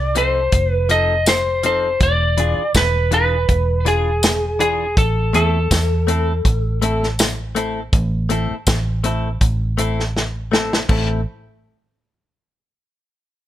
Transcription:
Already playing: C2 D5
0.15 F3 C4 D#4 A4 C5, closed hi-hat
0.52 F1, kick, closed hi-hat
0.70 B4
0.89 F3 C4 D#4 A4 D#5, closed hi-hat
1.26 C5, snare, closed hi-hat, tambourine
1.63 F3 C4 D#4 A4 C5, closed hi-hat
2.00 E1 D5, kick, closed hi-hat
2.37 E3 D4 F4 G#4, closed hi-hat
2.58 muted fingered electric bass stroke
2.74 E1 B4, kick, snare, closed hi-hat, tambourine
3.11 E3 D4 F4 G#4 B4, closed hi-hat
3.49 E1, kick, closed hi-hat
3.85 E3 D4 F4 G#4, closed hi-hat
4.23 snare, closed hi-hat, tambourine
4.59 E3 D4 F4 G#4, closed hi-hat
4.97 A1 A4, kick, closed hi-hat
5.33 E2 A3 C4 E4 A4, closed hi-hat
5.71 E2, kick, snare, closed hi-hat, tambourine
6.07 A3 C4 E4 A4, closed hi-hat
6.45 A1, kick, closed hi-hat
6.82 A3 C4 E4 A4, closed hi-hat
7.03 snare
7.19 snare, closed hi-hat, tambourine
7.55 A3 C4 E4 A4, closed hi-hat
7.93 A1, kick, closed hi-hat
8.29 A3 C4 E4 A4, closed hi-hat
8.51 muted fingered electric bass stroke
8.67 A1, kick, snare, closed hi-hat, tambourine
9.04 A3 C4 E4 A4, closed hi-hat
9.41 A1, kick, closed hi-hat
9.78 A3 C4 E4 A4, closed hi-hat
10.00 snare
10.17 snare
10.52 A3 C4 E4 A4, snare
10.73 snare
10.89 A1 A3 C4 E4 A4, kick, crash

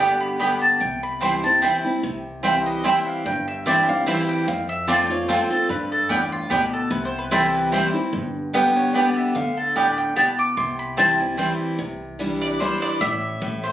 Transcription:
Already playing: G1 G2
0.00 D3 G3 B3 G4 G5
0.20 B5
0.40 D3 G3 B3 G4 D5 G5 B5
0.62 A5
0.80 C2 C3 G5
1.03 B5
1.21 E3 G3 C4 E4 C5 G5 C6
1.44 C4 E4 A5
1.62 E3 G3 C4 E4 C5 G5
1.84 C4 E4
2.03 C2 C3
2.43 E3 G3 C4 E4 C5 F5 G5
2.66 D#5
2.84 E3 G3 C4 E4 C5 E5 G5
3.07 F5
3.25 G1 G2 G5
3.48 E5
3.66 E3 G3 C4 E4 C5 D5 G5
3.88 C4 E4 F5
4.06 E3 G3 C4 E4 C5 E5 G5
4.29 G5
4.48 F2 F5
4.69 E5
4.87 F3 A3 C4 F4 C5 D5 A5
5.09 C4 F4 C#5
5.28 F3 A3 C4 F4 C5 A5
5.50 C4 F4 A4
5.69 G2 B4
5.92 A4
6.09 E2 A2 B3 G4 D5 G5
6.32 F4
6.50 D2 B2 B3 G4 D5 G5
6.73 A4
6.90 C2 C3 B4
7.05 C5
7.19 B4
7.31 E3 G3 C4 E4 A4 C5 G5
7.54 B4
7.72 E3 G3 C4 E4 C5 G5
7.94 C4 E4
8.13 G1 G2
8.53 D3 G3 B3 G4 D5 G5
8.76 C#5
8.94 D3 G3 B3 G4 D5 G5
9.16 E5
9.35 D2 D3 F5
9.57 A4
9.76 A2 B3 G4 D5 G5
9.98 G5
10.16 B2 B3 G4 D5 G5 A5
10.39 D6
10.57 C2 C3 C6
10.79 B5
10.97 E3 G3 C4 E4 C5 G5 A5
11.19 C4 E4 G#5
11.37 E3 G3 C4 E4 C5 G5
11.79 C2 C3
12.19 E3 G3 D4 E4
12.42 D5
12.60 E3 G3 D4 E4 C5
12.82 D5
13.01 A1 A2 E5
13.42 A1 A2
13.64 C5

